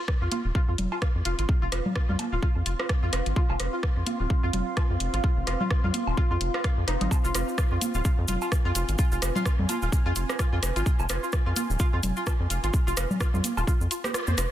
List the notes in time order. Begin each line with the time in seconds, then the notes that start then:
Already playing: C4
0.08 kick, cross-stick
0.15 F4 F5
0.21 F2 F4
0.32 F4, closed hi-hat, high conga
0.36 C6
0.45 D#1
0.55 F4, kick
0.68 F2 F4
0.78 F1, closed hi-hat, low conga
0.92 F4, high woodblock
1.02 F4, kick, cross-stick, closed hi-hat
1.15 F2
1.25 F1 F4, closed hi-hat
1.39 G#1 F4, closed hi-hat
1.49 kick
1.62 F1 F4
1.72 F1 F4, cross-stick, closed hi-hat
1.86 low conga
1.96 F4, kick, cross-stick
2.09 F2 F4, low conga
2.19 closed hi-hat, high conga, high woodblock
2.32 D#1 F4
2.42 F4, kick
2.56 F2
2.66 F1 F4, closed hi-hat
2.79 F4, cross-stick
2.89 kick, cross-stick, closed hi-hat
3.03 F2 F4
3.13 F1 F4, cross-stick, closed hi-hat
3.26 G#1, closed hi-hat
3.36 F4, kick
3.50 F1 F4, high woodblock
3.60 F1, cross-stick, closed hi-hat
3.73 F4
3.83 F4, kick, cross-stick
3.97 F2
4.06 F4, closed hi-hat, high conga
4.20 D#1 F4
4.30 kick
4.43 F2 F4
4.53 F1 F4, closed hi-hat, low conga
4.77 F4, kick, cross-stick, closed hi-hat, high woodblock
4.90 F2 F4
5.00 F1, closed hi-hat
5.13 G#1 F4, closed hi-hat
5.24 F4, kick
5.37 F1
5.47 F1 F4, cross-stick, closed hi-hat
5.60 F4, low conga
5.71 kick, cross-stick
5.84 F2 F4, low conga
5.94 F4, closed hi-hat, high conga
6.07 D#1, high woodblock
6.17 F4, kick
6.31 F2 F4
6.41 F1, closed hi-hat
6.54 F4, cross-stick
6.64 F5, kick, cross-stick, closed hi-hat
6.78 F2
6.88 F1 D#4, cross-stick, closed hi-hat
7.01 G#1 D#4, closed hi-hat, low conga
7.11 kick, cabasa, high woodblock
7.24 F1 F4, cabasa
7.34 F1 F4, cross-stick, closed hi-hat, cabasa
7.48 cabasa
7.58 F4, kick, cross-stick, cabasa
7.71 F2 F4
7.81 closed hi-hat, high conga, cabasa
7.87 G#5
7.94 D#1 F4, cabasa
8.05 F4, kick, cabasa
8.18 F2
8.28 F1 F4, closed hi-hat, low conga, cabasa
8.41 F4, cabasa, high woodblock
8.52 kick, cross-stick, closed hi-hat, cabasa
8.65 F2 F4
8.75 F1 F4, closed hi-hat, cabasa
8.89 G#1, closed hi-hat, cabasa
8.98 F4, kick, cabasa
9.12 F1 F4, cabasa
9.22 F1, cross-stick, closed hi-hat, cabasa
9.35 F4, low conga, cabasa
9.45 F4, kick, cross-stick, cabasa
9.59 F2, low conga
9.69 F4, closed hi-hat, high conga, cabasa, high woodblock
9.82 D#1 F4, cabasa
9.92 kick, cabasa
10.06 F2 F4
10.16 F1 F4, closed hi-hat, cabasa
10.29 cross-stick, cabasa
10.39 F4, kick, cross-stick, closed hi-hat, cabasa
10.53 F2 F4
10.63 F1, cross-stick, closed hi-hat, cabasa
10.76 G#1 F4, closed hi-hat, cabasa
10.86 F4, kick, cabasa
10.99 F1, cabasa, high woodblock
11.09 F1 F4, cross-stick, closed hi-hat, cabasa
11.23 F4, cabasa
11.32 kick, cross-stick, cabasa
11.46 F2 F4
11.56 F4, closed hi-hat, high conga, cabasa
11.70 D#1, cabasa
11.79 F4, kick, cabasa
11.93 F2 F4
12.03 F1, closed hi-hat, low conga, cabasa
12.16 F4, cabasa
12.27 kick, cross-stick, closed hi-hat, cabasa, high woodblock
12.40 F2
12.50 F1 F4, closed hi-hat, cabasa
12.64 G#1 F4, closed hi-hat, cabasa
12.73 kick, cabasa
12.87 F1 F4, cabasa
12.97 F1 F4, cross-stick, closed hi-hat, cabasa
13.11 low conga, cabasa
13.20 F4, kick, cross-stick, cabasa
13.34 F2 F4, low conga, cabasa
13.44 closed hi-hat, high conga, cabasa
13.57 D#1 F4, cabasa, high woodblock
13.67 F4, kick, cabasa
13.81 F2, cabasa
13.91 F4, closed hi-hat, cabasa
14.04 G4, cross-stick, high conga, cabasa
14.14 F4, cross-stick, closed hi-hat, cabasa
14.27 F2 C5, high conga, cabasa
14.38 F1 F4, cross-stick, closed hi-hat, cabasa